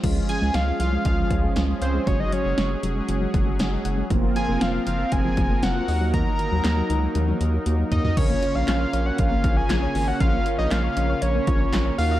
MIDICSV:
0, 0, Header, 1, 7, 480
1, 0, Start_track
1, 0, Key_signature, -5, "minor"
1, 0, Tempo, 508475
1, 34, Time_signature, 4, 2, 24, 8
1, 11514, End_track
2, 0, Start_track
2, 0, Title_t, "Analog synth lead"
2, 0, Program_c, 0, 81
2, 275, Note_on_c, 0, 80, 106
2, 516, Note_on_c, 0, 77, 97
2, 531, Note_off_c, 0, 80, 0
2, 752, Note_off_c, 0, 77, 0
2, 758, Note_on_c, 0, 77, 92
2, 979, Note_off_c, 0, 77, 0
2, 998, Note_on_c, 0, 77, 93
2, 1443, Note_off_c, 0, 77, 0
2, 1719, Note_on_c, 0, 72, 92
2, 1957, Note_on_c, 0, 73, 105
2, 1971, Note_off_c, 0, 72, 0
2, 2076, Note_on_c, 0, 75, 104
2, 2090, Note_off_c, 0, 73, 0
2, 2195, Note_on_c, 0, 73, 101
2, 2209, Note_off_c, 0, 75, 0
2, 2675, Note_off_c, 0, 73, 0
2, 4117, Note_on_c, 0, 80, 91
2, 4357, Note_on_c, 0, 77, 88
2, 4371, Note_off_c, 0, 80, 0
2, 4590, Note_off_c, 0, 77, 0
2, 4596, Note_on_c, 0, 77, 89
2, 4835, Note_on_c, 0, 80, 107
2, 4849, Note_off_c, 0, 77, 0
2, 5315, Note_on_c, 0, 78, 100
2, 5329, Note_off_c, 0, 80, 0
2, 5790, Note_off_c, 0, 78, 0
2, 5796, Note_on_c, 0, 82, 118
2, 7197, Note_off_c, 0, 82, 0
2, 7474, Note_on_c, 0, 75, 86
2, 7585, Note_off_c, 0, 75, 0
2, 7593, Note_on_c, 0, 75, 85
2, 7705, Note_off_c, 0, 75, 0
2, 7712, Note_on_c, 0, 73, 93
2, 8073, Note_on_c, 0, 77, 86
2, 8088, Note_off_c, 0, 73, 0
2, 8187, Note_off_c, 0, 77, 0
2, 8193, Note_on_c, 0, 77, 93
2, 8552, Note_on_c, 0, 78, 91
2, 8566, Note_off_c, 0, 77, 0
2, 8674, Note_on_c, 0, 77, 102
2, 8688, Note_off_c, 0, 78, 0
2, 9031, Note_on_c, 0, 80, 101
2, 9045, Note_off_c, 0, 77, 0
2, 9511, Note_on_c, 0, 78, 97
2, 9526, Note_off_c, 0, 80, 0
2, 9626, Note_off_c, 0, 78, 0
2, 9632, Note_on_c, 0, 77, 104
2, 9968, Note_off_c, 0, 77, 0
2, 9992, Note_on_c, 0, 75, 90
2, 10112, Note_on_c, 0, 77, 102
2, 10126, Note_off_c, 0, 75, 0
2, 10591, Note_on_c, 0, 73, 106
2, 10605, Note_off_c, 0, 77, 0
2, 11306, Note_off_c, 0, 73, 0
2, 11312, Note_on_c, 0, 77, 98
2, 11424, Note_off_c, 0, 77, 0
2, 11431, Note_on_c, 0, 77, 100
2, 11514, Note_off_c, 0, 77, 0
2, 11514, End_track
3, 0, Start_track
3, 0, Title_t, "Analog polysynth"
3, 0, Program_c, 1, 90
3, 33, Note_on_c, 1, 56, 80
3, 33, Note_on_c, 1, 61, 71
3, 33, Note_on_c, 1, 65, 89
3, 1916, Note_off_c, 1, 56, 0
3, 1916, Note_off_c, 1, 61, 0
3, 1916, Note_off_c, 1, 65, 0
3, 1953, Note_on_c, 1, 61, 62
3, 1954, Note_on_c, 1, 56, 68
3, 1954, Note_on_c, 1, 66, 74
3, 3836, Note_off_c, 1, 56, 0
3, 3836, Note_off_c, 1, 61, 0
3, 3836, Note_off_c, 1, 66, 0
3, 3874, Note_on_c, 1, 60, 73
3, 3874, Note_on_c, 1, 65, 88
3, 3875, Note_on_c, 1, 58, 80
3, 5520, Note_off_c, 1, 60, 0
3, 5520, Note_off_c, 1, 65, 0
3, 5521, Note_off_c, 1, 58, 0
3, 5553, Note_on_c, 1, 58, 67
3, 5553, Note_on_c, 1, 63, 60
3, 5553, Note_on_c, 1, 66, 76
3, 7676, Note_off_c, 1, 58, 0
3, 7676, Note_off_c, 1, 63, 0
3, 7676, Note_off_c, 1, 66, 0
3, 7713, Note_on_c, 1, 65, 62
3, 7713, Note_on_c, 1, 70, 75
3, 7714, Note_on_c, 1, 61, 70
3, 11276, Note_off_c, 1, 61, 0
3, 11276, Note_off_c, 1, 65, 0
3, 11276, Note_off_c, 1, 70, 0
3, 11314, Note_on_c, 1, 66, 63
3, 11315, Note_on_c, 1, 63, 72
3, 11315, Note_on_c, 1, 70, 78
3, 11514, Note_off_c, 1, 63, 0
3, 11514, Note_off_c, 1, 66, 0
3, 11514, Note_off_c, 1, 70, 0
3, 11514, End_track
4, 0, Start_track
4, 0, Title_t, "Analog synth pad"
4, 0, Program_c, 2, 89
4, 34, Note_on_c, 2, 61, 70
4, 34, Note_on_c, 2, 68, 86
4, 36, Note_on_c, 2, 53, 79
4, 1936, Note_off_c, 2, 53, 0
4, 1957, Note_on_c, 2, 54, 81
4, 3836, Note_off_c, 2, 61, 0
4, 3836, Note_off_c, 2, 68, 0
4, 3856, Note_off_c, 2, 54, 0
4, 3874, Note_on_c, 2, 53, 78
4, 3874, Note_on_c, 2, 70, 86
4, 3875, Note_on_c, 2, 60, 73
4, 5537, Note_off_c, 2, 53, 0
4, 5537, Note_off_c, 2, 60, 0
4, 5551, Note_on_c, 2, 63, 72
4, 5553, Note_on_c, 2, 54, 80
4, 7676, Note_off_c, 2, 70, 0
4, 7691, Note_off_c, 2, 63, 0
4, 7692, Note_off_c, 2, 54, 0
4, 7715, Note_on_c, 2, 49, 78
4, 7716, Note_on_c, 2, 58, 72
4, 7717, Note_on_c, 2, 61, 88
4, 11279, Note_off_c, 2, 49, 0
4, 11279, Note_off_c, 2, 61, 0
4, 11314, Note_on_c, 2, 66, 87
4, 11315, Note_on_c, 2, 51, 78
4, 11514, Note_off_c, 2, 51, 0
4, 11514, Note_off_c, 2, 58, 0
4, 11514, Note_off_c, 2, 66, 0
4, 11514, End_track
5, 0, Start_track
5, 0, Title_t, "Synth arpeggio sound"
5, 0, Program_c, 3, 84
5, 33, Note_on_c, 3, 53, 89
5, 104, Note_off_c, 3, 53, 0
5, 152, Note_on_c, 3, 53, 72
5, 224, Note_off_c, 3, 53, 0
5, 271, Note_on_c, 3, 53, 73
5, 343, Note_off_c, 3, 53, 0
5, 393, Note_on_c, 3, 56, 90
5, 464, Note_off_c, 3, 56, 0
5, 514, Note_on_c, 3, 61, 79
5, 585, Note_off_c, 3, 61, 0
5, 632, Note_on_c, 3, 56, 77
5, 703, Note_off_c, 3, 56, 0
5, 753, Note_on_c, 3, 53, 96
5, 824, Note_off_c, 3, 53, 0
5, 873, Note_on_c, 3, 56, 76
5, 944, Note_off_c, 3, 56, 0
5, 993, Note_on_c, 3, 53, 70
5, 1064, Note_off_c, 3, 53, 0
5, 1114, Note_on_c, 3, 53, 86
5, 1185, Note_off_c, 3, 53, 0
5, 1234, Note_on_c, 3, 53, 72
5, 1305, Note_off_c, 3, 53, 0
5, 1354, Note_on_c, 3, 56, 75
5, 1425, Note_off_c, 3, 56, 0
5, 1473, Note_on_c, 3, 61, 95
5, 1544, Note_off_c, 3, 61, 0
5, 1593, Note_on_c, 3, 56, 74
5, 1664, Note_off_c, 3, 56, 0
5, 1714, Note_on_c, 3, 77, 85
5, 1785, Note_off_c, 3, 77, 0
5, 1835, Note_on_c, 3, 56, 89
5, 1905, Note_off_c, 3, 56, 0
5, 1954, Note_on_c, 3, 54, 91
5, 2025, Note_off_c, 3, 54, 0
5, 2074, Note_on_c, 3, 54, 73
5, 2145, Note_off_c, 3, 54, 0
5, 2195, Note_on_c, 3, 54, 73
5, 2265, Note_off_c, 3, 54, 0
5, 2314, Note_on_c, 3, 56, 90
5, 2385, Note_off_c, 3, 56, 0
5, 2434, Note_on_c, 3, 61, 77
5, 2505, Note_off_c, 3, 61, 0
5, 2553, Note_on_c, 3, 56, 78
5, 2624, Note_off_c, 3, 56, 0
5, 2673, Note_on_c, 3, 54, 95
5, 2744, Note_off_c, 3, 54, 0
5, 2794, Note_on_c, 3, 56, 78
5, 2865, Note_off_c, 3, 56, 0
5, 2913, Note_on_c, 3, 54, 70
5, 2984, Note_off_c, 3, 54, 0
5, 3034, Note_on_c, 3, 54, 91
5, 3105, Note_off_c, 3, 54, 0
5, 3153, Note_on_c, 3, 54, 73
5, 3224, Note_off_c, 3, 54, 0
5, 3272, Note_on_c, 3, 56, 73
5, 3344, Note_off_c, 3, 56, 0
5, 3393, Note_on_c, 3, 61, 96
5, 3464, Note_off_c, 3, 61, 0
5, 3514, Note_on_c, 3, 56, 76
5, 3585, Note_off_c, 3, 56, 0
5, 3635, Note_on_c, 3, 78, 85
5, 3705, Note_off_c, 3, 78, 0
5, 3754, Note_on_c, 3, 56, 91
5, 3825, Note_off_c, 3, 56, 0
5, 3873, Note_on_c, 3, 53, 93
5, 3944, Note_off_c, 3, 53, 0
5, 3993, Note_on_c, 3, 53, 73
5, 4064, Note_off_c, 3, 53, 0
5, 4113, Note_on_c, 3, 53, 78
5, 4184, Note_off_c, 3, 53, 0
5, 4232, Note_on_c, 3, 58, 92
5, 4303, Note_off_c, 3, 58, 0
5, 4352, Note_on_c, 3, 60, 78
5, 4424, Note_off_c, 3, 60, 0
5, 4471, Note_on_c, 3, 58, 76
5, 4543, Note_off_c, 3, 58, 0
5, 4591, Note_on_c, 3, 53, 95
5, 4663, Note_off_c, 3, 53, 0
5, 4711, Note_on_c, 3, 58, 77
5, 4783, Note_off_c, 3, 58, 0
5, 4833, Note_on_c, 3, 53, 72
5, 4904, Note_off_c, 3, 53, 0
5, 4953, Note_on_c, 3, 53, 86
5, 5024, Note_off_c, 3, 53, 0
5, 5072, Note_on_c, 3, 53, 74
5, 5143, Note_off_c, 3, 53, 0
5, 5192, Note_on_c, 3, 58, 76
5, 5263, Note_off_c, 3, 58, 0
5, 5311, Note_on_c, 3, 60, 98
5, 5383, Note_off_c, 3, 60, 0
5, 5433, Note_on_c, 3, 58, 77
5, 5504, Note_off_c, 3, 58, 0
5, 5553, Note_on_c, 3, 75, 90
5, 5624, Note_off_c, 3, 75, 0
5, 5674, Note_on_c, 3, 54, 91
5, 5745, Note_off_c, 3, 54, 0
5, 5791, Note_on_c, 3, 51, 91
5, 5863, Note_off_c, 3, 51, 0
5, 5911, Note_on_c, 3, 51, 72
5, 5983, Note_off_c, 3, 51, 0
5, 6032, Note_on_c, 3, 51, 76
5, 6104, Note_off_c, 3, 51, 0
5, 6153, Note_on_c, 3, 54, 95
5, 6224, Note_off_c, 3, 54, 0
5, 6272, Note_on_c, 3, 58, 82
5, 6343, Note_off_c, 3, 58, 0
5, 6393, Note_on_c, 3, 54, 76
5, 6464, Note_off_c, 3, 54, 0
5, 6514, Note_on_c, 3, 51, 95
5, 6585, Note_off_c, 3, 51, 0
5, 6634, Note_on_c, 3, 54, 78
5, 6705, Note_off_c, 3, 54, 0
5, 6751, Note_on_c, 3, 51, 74
5, 6823, Note_off_c, 3, 51, 0
5, 6873, Note_on_c, 3, 51, 90
5, 6944, Note_off_c, 3, 51, 0
5, 6993, Note_on_c, 3, 51, 71
5, 7064, Note_off_c, 3, 51, 0
5, 7113, Note_on_c, 3, 54, 75
5, 7184, Note_off_c, 3, 54, 0
5, 7233, Note_on_c, 3, 58, 96
5, 7304, Note_off_c, 3, 58, 0
5, 7351, Note_on_c, 3, 54, 77
5, 7423, Note_off_c, 3, 54, 0
5, 7473, Note_on_c, 3, 75, 87
5, 7544, Note_off_c, 3, 75, 0
5, 7591, Note_on_c, 3, 54, 89
5, 7663, Note_off_c, 3, 54, 0
5, 7711, Note_on_c, 3, 49, 93
5, 7783, Note_off_c, 3, 49, 0
5, 7832, Note_on_c, 3, 58, 78
5, 7904, Note_off_c, 3, 58, 0
5, 7952, Note_on_c, 3, 65, 82
5, 8023, Note_off_c, 3, 65, 0
5, 8071, Note_on_c, 3, 73, 99
5, 8143, Note_off_c, 3, 73, 0
5, 8192, Note_on_c, 3, 65, 81
5, 8263, Note_off_c, 3, 65, 0
5, 8313, Note_on_c, 3, 73, 85
5, 8384, Note_off_c, 3, 73, 0
5, 8432, Note_on_c, 3, 73, 106
5, 8503, Note_off_c, 3, 73, 0
5, 8553, Note_on_c, 3, 73, 84
5, 8624, Note_off_c, 3, 73, 0
5, 8793, Note_on_c, 3, 58, 93
5, 8864, Note_off_c, 3, 58, 0
5, 8912, Note_on_c, 3, 65, 81
5, 8984, Note_off_c, 3, 65, 0
5, 9032, Note_on_c, 3, 73, 81
5, 9104, Note_off_c, 3, 73, 0
5, 9152, Note_on_c, 3, 65, 96
5, 9223, Note_off_c, 3, 65, 0
5, 9273, Note_on_c, 3, 73, 87
5, 9344, Note_off_c, 3, 73, 0
5, 9394, Note_on_c, 3, 65, 86
5, 9465, Note_off_c, 3, 65, 0
5, 9512, Note_on_c, 3, 73, 96
5, 9583, Note_off_c, 3, 73, 0
5, 9633, Note_on_c, 3, 49, 93
5, 9704, Note_off_c, 3, 49, 0
5, 9753, Note_on_c, 3, 58, 76
5, 9824, Note_off_c, 3, 58, 0
5, 9872, Note_on_c, 3, 65, 82
5, 9943, Note_off_c, 3, 65, 0
5, 9994, Note_on_c, 3, 73, 102
5, 10065, Note_off_c, 3, 73, 0
5, 10113, Note_on_c, 3, 65, 81
5, 10184, Note_off_c, 3, 65, 0
5, 10232, Note_on_c, 3, 73, 89
5, 10303, Note_off_c, 3, 73, 0
5, 10355, Note_on_c, 3, 73, 108
5, 10425, Note_off_c, 3, 73, 0
5, 10474, Note_on_c, 3, 73, 83
5, 10545, Note_off_c, 3, 73, 0
5, 10714, Note_on_c, 3, 58, 93
5, 10785, Note_off_c, 3, 58, 0
5, 10833, Note_on_c, 3, 65, 82
5, 10904, Note_off_c, 3, 65, 0
5, 10953, Note_on_c, 3, 73, 84
5, 11024, Note_off_c, 3, 73, 0
5, 11072, Note_on_c, 3, 65, 103
5, 11144, Note_off_c, 3, 65, 0
5, 11193, Note_on_c, 3, 73, 85
5, 11264, Note_off_c, 3, 73, 0
5, 11314, Note_on_c, 3, 66, 84
5, 11385, Note_off_c, 3, 66, 0
5, 11434, Note_on_c, 3, 75, 96
5, 11505, Note_off_c, 3, 75, 0
5, 11514, End_track
6, 0, Start_track
6, 0, Title_t, "Analog synth bass"
6, 0, Program_c, 4, 38
6, 34, Note_on_c, 4, 37, 108
6, 202, Note_off_c, 4, 37, 0
6, 393, Note_on_c, 4, 37, 92
6, 477, Note_off_c, 4, 37, 0
6, 513, Note_on_c, 4, 37, 102
6, 681, Note_off_c, 4, 37, 0
6, 753, Note_on_c, 4, 36, 90
6, 922, Note_off_c, 4, 36, 0
6, 996, Note_on_c, 4, 37, 103
6, 1163, Note_off_c, 4, 37, 0
6, 1233, Note_on_c, 4, 37, 105
6, 1401, Note_off_c, 4, 37, 0
6, 1474, Note_on_c, 4, 37, 106
6, 1642, Note_off_c, 4, 37, 0
6, 1714, Note_on_c, 4, 37, 96
6, 1882, Note_off_c, 4, 37, 0
6, 1955, Note_on_c, 4, 30, 114
6, 2122, Note_off_c, 4, 30, 0
6, 2315, Note_on_c, 4, 30, 102
6, 2399, Note_off_c, 4, 30, 0
6, 2435, Note_on_c, 4, 30, 105
6, 2602, Note_off_c, 4, 30, 0
6, 2674, Note_on_c, 4, 29, 88
6, 2842, Note_off_c, 4, 29, 0
6, 2914, Note_on_c, 4, 30, 101
6, 3082, Note_off_c, 4, 30, 0
6, 3153, Note_on_c, 4, 30, 101
6, 3322, Note_off_c, 4, 30, 0
6, 3394, Note_on_c, 4, 30, 103
6, 3562, Note_off_c, 4, 30, 0
6, 3634, Note_on_c, 4, 30, 98
6, 3802, Note_off_c, 4, 30, 0
6, 3875, Note_on_c, 4, 29, 107
6, 4042, Note_off_c, 4, 29, 0
6, 4234, Note_on_c, 4, 29, 100
6, 4318, Note_off_c, 4, 29, 0
6, 4355, Note_on_c, 4, 29, 94
6, 4523, Note_off_c, 4, 29, 0
6, 4596, Note_on_c, 4, 30, 89
6, 4763, Note_off_c, 4, 30, 0
6, 4837, Note_on_c, 4, 29, 115
6, 5004, Note_off_c, 4, 29, 0
6, 5072, Note_on_c, 4, 29, 101
6, 5241, Note_off_c, 4, 29, 0
6, 5314, Note_on_c, 4, 29, 107
6, 5482, Note_off_c, 4, 29, 0
6, 5554, Note_on_c, 4, 39, 107
6, 5890, Note_off_c, 4, 39, 0
6, 6153, Note_on_c, 4, 39, 106
6, 6237, Note_off_c, 4, 39, 0
6, 6272, Note_on_c, 4, 39, 100
6, 6441, Note_off_c, 4, 39, 0
6, 6512, Note_on_c, 4, 37, 92
6, 6681, Note_off_c, 4, 37, 0
6, 6752, Note_on_c, 4, 39, 107
6, 6921, Note_off_c, 4, 39, 0
6, 6992, Note_on_c, 4, 39, 105
6, 7161, Note_off_c, 4, 39, 0
6, 7234, Note_on_c, 4, 39, 105
6, 7402, Note_off_c, 4, 39, 0
6, 7473, Note_on_c, 4, 39, 109
6, 7641, Note_off_c, 4, 39, 0
6, 7713, Note_on_c, 4, 34, 112
6, 7881, Note_off_c, 4, 34, 0
6, 8073, Note_on_c, 4, 34, 99
6, 8157, Note_off_c, 4, 34, 0
6, 8192, Note_on_c, 4, 34, 102
6, 8361, Note_off_c, 4, 34, 0
6, 8433, Note_on_c, 4, 34, 97
6, 8601, Note_off_c, 4, 34, 0
6, 8676, Note_on_c, 4, 34, 104
6, 8843, Note_off_c, 4, 34, 0
6, 8913, Note_on_c, 4, 34, 101
6, 9081, Note_off_c, 4, 34, 0
6, 9154, Note_on_c, 4, 34, 101
6, 9322, Note_off_c, 4, 34, 0
6, 9393, Note_on_c, 4, 32, 103
6, 9562, Note_off_c, 4, 32, 0
6, 9634, Note_on_c, 4, 34, 119
6, 9802, Note_off_c, 4, 34, 0
6, 9994, Note_on_c, 4, 34, 103
6, 10078, Note_off_c, 4, 34, 0
6, 10114, Note_on_c, 4, 34, 101
6, 10282, Note_off_c, 4, 34, 0
6, 10354, Note_on_c, 4, 34, 103
6, 10522, Note_off_c, 4, 34, 0
6, 10594, Note_on_c, 4, 34, 103
6, 10762, Note_off_c, 4, 34, 0
6, 10833, Note_on_c, 4, 34, 102
6, 11001, Note_off_c, 4, 34, 0
6, 11074, Note_on_c, 4, 34, 103
6, 11242, Note_off_c, 4, 34, 0
6, 11314, Note_on_c, 4, 39, 97
6, 11514, Note_off_c, 4, 39, 0
6, 11514, End_track
7, 0, Start_track
7, 0, Title_t, "Drums"
7, 34, Note_on_c, 9, 36, 99
7, 34, Note_on_c, 9, 42, 70
7, 34, Note_on_c, 9, 49, 87
7, 128, Note_off_c, 9, 36, 0
7, 128, Note_off_c, 9, 42, 0
7, 128, Note_off_c, 9, 49, 0
7, 274, Note_on_c, 9, 42, 72
7, 368, Note_off_c, 9, 42, 0
7, 512, Note_on_c, 9, 38, 96
7, 512, Note_on_c, 9, 42, 65
7, 607, Note_off_c, 9, 38, 0
7, 607, Note_off_c, 9, 42, 0
7, 754, Note_on_c, 9, 42, 75
7, 848, Note_off_c, 9, 42, 0
7, 991, Note_on_c, 9, 42, 76
7, 996, Note_on_c, 9, 36, 82
7, 1086, Note_off_c, 9, 42, 0
7, 1091, Note_off_c, 9, 36, 0
7, 1232, Note_on_c, 9, 42, 70
7, 1233, Note_on_c, 9, 36, 105
7, 1327, Note_off_c, 9, 36, 0
7, 1327, Note_off_c, 9, 42, 0
7, 1472, Note_on_c, 9, 42, 66
7, 1477, Note_on_c, 9, 38, 114
7, 1567, Note_off_c, 9, 42, 0
7, 1571, Note_off_c, 9, 38, 0
7, 1715, Note_on_c, 9, 42, 70
7, 1809, Note_off_c, 9, 42, 0
7, 1954, Note_on_c, 9, 42, 72
7, 1955, Note_on_c, 9, 36, 102
7, 2049, Note_off_c, 9, 36, 0
7, 2049, Note_off_c, 9, 42, 0
7, 2194, Note_on_c, 9, 42, 72
7, 2289, Note_off_c, 9, 42, 0
7, 2433, Note_on_c, 9, 38, 103
7, 2433, Note_on_c, 9, 42, 65
7, 2528, Note_off_c, 9, 38, 0
7, 2528, Note_off_c, 9, 42, 0
7, 2675, Note_on_c, 9, 42, 75
7, 2769, Note_off_c, 9, 42, 0
7, 2913, Note_on_c, 9, 42, 76
7, 3007, Note_off_c, 9, 42, 0
7, 3153, Note_on_c, 9, 42, 70
7, 3154, Note_on_c, 9, 36, 106
7, 3248, Note_off_c, 9, 36, 0
7, 3248, Note_off_c, 9, 42, 0
7, 3393, Note_on_c, 9, 42, 66
7, 3397, Note_on_c, 9, 38, 114
7, 3487, Note_off_c, 9, 42, 0
7, 3491, Note_off_c, 9, 38, 0
7, 3635, Note_on_c, 9, 42, 74
7, 3729, Note_off_c, 9, 42, 0
7, 3875, Note_on_c, 9, 36, 101
7, 3875, Note_on_c, 9, 42, 72
7, 3969, Note_off_c, 9, 36, 0
7, 3969, Note_off_c, 9, 42, 0
7, 4115, Note_on_c, 9, 42, 72
7, 4210, Note_off_c, 9, 42, 0
7, 4353, Note_on_c, 9, 38, 105
7, 4353, Note_on_c, 9, 42, 67
7, 4448, Note_off_c, 9, 38, 0
7, 4448, Note_off_c, 9, 42, 0
7, 4594, Note_on_c, 9, 42, 78
7, 4689, Note_off_c, 9, 42, 0
7, 4831, Note_on_c, 9, 42, 76
7, 4836, Note_on_c, 9, 36, 83
7, 4926, Note_off_c, 9, 42, 0
7, 4931, Note_off_c, 9, 36, 0
7, 5071, Note_on_c, 9, 42, 72
7, 5072, Note_on_c, 9, 36, 110
7, 5166, Note_off_c, 9, 42, 0
7, 5167, Note_off_c, 9, 36, 0
7, 5312, Note_on_c, 9, 42, 70
7, 5316, Note_on_c, 9, 38, 114
7, 5406, Note_off_c, 9, 42, 0
7, 5410, Note_off_c, 9, 38, 0
7, 5554, Note_on_c, 9, 46, 74
7, 5648, Note_off_c, 9, 46, 0
7, 5793, Note_on_c, 9, 36, 102
7, 5793, Note_on_c, 9, 42, 72
7, 5888, Note_off_c, 9, 36, 0
7, 5888, Note_off_c, 9, 42, 0
7, 6033, Note_on_c, 9, 42, 74
7, 6127, Note_off_c, 9, 42, 0
7, 6272, Note_on_c, 9, 38, 104
7, 6272, Note_on_c, 9, 39, 85
7, 6272, Note_on_c, 9, 42, 67
7, 6367, Note_off_c, 9, 38, 0
7, 6367, Note_off_c, 9, 39, 0
7, 6367, Note_off_c, 9, 42, 0
7, 6513, Note_on_c, 9, 42, 76
7, 6608, Note_off_c, 9, 42, 0
7, 6751, Note_on_c, 9, 42, 75
7, 6753, Note_on_c, 9, 48, 60
7, 6845, Note_off_c, 9, 42, 0
7, 6847, Note_off_c, 9, 48, 0
7, 6874, Note_on_c, 9, 48, 56
7, 6968, Note_off_c, 9, 48, 0
7, 6992, Note_on_c, 9, 42, 71
7, 7087, Note_off_c, 9, 42, 0
7, 7232, Note_on_c, 9, 42, 67
7, 7326, Note_off_c, 9, 42, 0
7, 7473, Note_on_c, 9, 42, 71
7, 7473, Note_on_c, 9, 43, 102
7, 7567, Note_off_c, 9, 42, 0
7, 7567, Note_off_c, 9, 43, 0
7, 7594, Note_on_c, 9, 43, 92
7, 7688, Note_off_c, 9, 43, 0
7, 7714, Note_on_c, 9, 36, 99
7, 7714, Note_on_c, 9, 42, 73
7, 7714, Note_on_c, 9, 49, 97
7, 7808, Note_off_c, 9, 36, 0
7, 7808, Note_off_c, 9, 42, 0
7, 7808, Note_off_c, 9, 49, 0
7, 7954, Note_on_c, 9, 42, 73
7, 8049, Note_off_c, 9, 42, 0
7, 8192, Note_on_c, 9, 38, 104
7, 8192, Note_on_c, 9, 39, 87
7, 8192, Note_on_c, 9, 42, 68
7, 8286, Note_off_c, 9, 38, 0
7, 8286, Note_off_c, 9, 39, 0
7, 8286, Note_off_c, 9, 42, 0
7, 8434, Note_on_c, 9, 42, 76
7, 8528, Note_off_c, 9, 42, 0
7, 8670, Note_on_c, 9, 42, 79
7, 8676, Note_on_c, 9, 36, 84
7, 8764, Note_off_c, 9, 42, 0
7, 8770, Note_off_c, 9, 36, 0
7, 8911, Note_on_c, 9, 42, 76
7, 8912, Note_on_c, 9, 36, 109
7, 9005, Note_off_c, 9, 42, 0
7, 9007, Note_off_c, 9, 36, 0
7, 9152, Note_on_c, 9, 42, 68
7, 9157, Note_on_c, 9, 38, 119
7, 9157, Note_on_c, 9, 39, 96
7, 9247, Note_off_c, 9, 42, 0
7, 9251, Note_off_c, 9, 38, 0
7, 9251, Note_off_c, 9, 39, 0
7, 9394, Note_on_c, 9, 46, 74
7, 9488, Note_off_c, 9, 46, 0
7, 9633, Note_on_c, 9, 42, 73
7, 9634, Note_on_c, 9, 36, 100
7, 9727, Note_off_c, 9, 42, 0
7, 9728, Note_off_c, 9, 36, 0
7, 9873, Note_on_c, 9, 42, 74
7, 9967, Note_off_c, 9, 42, 0
7, 10113, Note_on_c, 9, 38, 102
7, 10113, Note_on_c, 9, 39, 83
7, 10113, Note_on_c, 9, 42, 66
7, 10207, Note_off_c, 9, 38, 0
7, 10207, Note_off_c, 9, 39, 0
7, 10207, Note_off_c, 9, 42, 0
7, 10353, Note_on_c, 9, 42, 78
7, 10448, Note_off_c, 9, 42, 0
7, 10591, Note_on_c, 9, 42, 78
7, 10685, Note_off_c, 9, 42, 0
7, 10831, Note_on_c, 9, 42, 72
7, 10833, Note_on_c, 9, 36, 109
7, 10925, Note_off_c, 9, 42, 0
7, 10927, Note_off_c, 9, 36, 0
7, 11071, Note_on_c, 9, 42, 69
7, 11076, Note_on_c, 9, 38, 114
7, 11076, Note_on_c, 9, 39, 100
7, 11166, Note_off_c, 9, 42, 0
7, 11170, Note_off_c, 9, 38, 0
7, 11170, Note_off_c, 9, 39, 0
7, 11314, Note_on_c, 9, 46, 74
7, 11409, Note_off_c, 9, 46, 0
7, 11514, End_track
0, 0, End_of_file